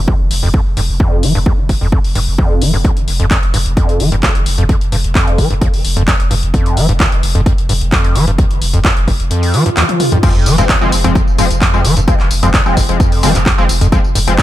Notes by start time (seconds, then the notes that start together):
0.08 D#2, kick
0.20 F1
0.31 F1, open hi-hat
0.43 F1 F2
0.54 F2, kick
0.66 F1
0.77 F1 G2, open hi-hat
0.89 F1
1.00 F2, kick
1.12 F1
1.23 F1 F3, open hi-hat
1.35 F1 G2
1.46 D#2, kick
1.58 F1
1.69 F1, kick, open hi-hat
1.81 F1 F2
1.92 F2, kick
2.04 F1, open hi-hat
2.15 F1 G2, open hi-hat
2.27 F1
2.38 F2, kick
2.51 F1
2.62 F1 F3, open hi-hat
2.74 F1 G2
2.85 D#2, kick, closed hi-hat
2.97 F1, closed hi-hat
3.08 F1, open hi-hat
3.20 F1 F2, closed hi-hat
3.31 F2, kick, clap, closed hi-hat
3.43 F1, closed hi-hat
3.54 F1 G2, open hi-hat
3.66 F1, closed hi-hat
3.77 F2, kick, closed hi-hat
3.89 F1, closed hi-hat
4.00 F1 F3, open hi-hat
4.12 F1 G2, closed hi-hat
4.23 D#2, kick, clap, closed hi-hat
4.35 F1, closed hi-hat
4.46 F1, open hi-hat
4.58 F1 F2, closed hi-hat
4.69 F2, kick, closed hi-hat
4.81 F1, closed hi-hat
4.92 F1 G2, open hi-hat
5.04 F1, closed hi-hat
5.15 F2, kick, clap, closed hi-hat
5.27 F1, closed hi-hat
5.38 F1 F3, kick, open hi-hat
5.50 F1 G2, closed hi-hat
5.62 D#2, kick, closed hi-hat
5.74 F1, open hi-hat
5.85 F1, open hi-hat
5.97 F1 F2, closed hi-hat
6.08 F2, kick, clap, closed hi-hat
6.20 F1, closed hi-hat
6.31 F1 G2, open hi-hat
6.43 F1, closed hi-hat
6.54 F2, kick, closed hi-hat
6.66 F1, closed hi-hat
6.77 F1 F3, open hi-hat
6.89 F1 G2, closed hi-hat
7.00 D#2, kick, clap, closed hi-hat
7.12 F1, closed hi-hat
7.23 F1, open hi-hat
7.35 F1 F2, closed hi-hat
7.46 F2, kick, closed hi-hat
7.58 F1, closed hi-hat
7.69 F1 G2, open hi-hat
7.81 F1, closed hi-hat
7.92 F2, kick, clap, closed hi-hat
8.04 F1, closed hi-hat
8.15 F1 F3, open hi-hat
8.27 F1 G2, closed hi-hat
8.38 D#2, kick, closed hi-hat
8.51 F1, closed hi-hat
8.61 F1, open hi-hat
8.74 F1 F2, closed hi-hat
8.85 F2, kick, clap, closed hi-hat
8.97 F1, closed hi-hat
9.08 F1 G2, kick, open hi-hat
9.20 F1, closed hi-hat
9.31 F2, closed hi-hat, swell
9.43 open hi-hat
9.54 F3, open hi-hat
9.66 G2, closed hi-hat
9.77 D#2, clap, closed hi-hat, high tom
9.89 closed hi-hat, high tom
10.00 open hi-hat, mid tom
10.12 F2, closed hi-hat, mid tom
10.23 F2 F3 G#3 C4, kick, closed hi-hat, tambourine, crash
10.35 F1, tambourine
10.46 F1 F3, open hi-hat, tambourine
10.58 F1 G2 F3 G#3 C4, closed hi-hat, tambourine
10.69 D#2, kick, clap, closed hi-hat, tambourine
10.81 F1 F3 G#3 C4, tambourine
10.92 F1, open hi-hat, tambourine
11.04 F1 F2 F3 G#3 C4, closed hi-hat, tambourine
11.15 F2, kick, closed hi-hat, tambourine
11.27 F1, tambourine
11.38 F1 G2 F3 G#3 C4, open hi-hat, tambourine
11.51 F1, closed hi-hat, tambourine
11.62 F2, kick, clap, closed hi-hat, tambourine
11.74 F1 F3 G#3 C4, tambourine
11.85 F1 F3, open hi-hat, tambourine
11.97 F1 G2, closed hi-hat, tambourine
12.08 D#2 F3 G#3 C4, kick, closed hi-hat, tambourine
12.20 F1, clap, tambourine
12.31 F1, open hi-hat, tambourine
12.43 F1 F2 F3 G#3 C4, closed hi-hat, tambourine
12.54 F2, kick, clap, closed hi-hat, tambourine
12.66 F1 F3 G#3 C4, tambourine
12.77 F1 G2, kick, open hi-hat, tambourine
12.89 F1 F3 G#3 C4, closed hi-hat, tambourine
13.00 F2, kick, closed hi-hat, tambourine
13.12 F1, open hi-hat, tambourine
13.23 F1 F3 G#3 C4, open hi-hat, tambourine
13.35 F1 G2, clap, closed hi-hat, tambourine
13.46 D#2, kick, clap, closed hi-hat, tambourine
13.58 F1 F3 G#3 C4, tambourine
13.69 F1, open hi-hat, tambourine
13.81 F1 F2, closed hi-hat, tambourine
13.92 F2 F3 G#3 C4, kick, closed hi-hat, tambourine
14.04 F1, tambourine
14.15 F1 G2, open hi-hat, tambourine
14.27 F1 F3 G#3 C4, closed hi-hat, tambourine
14.38 F2, kick, clap, closed hi-hat, tambourine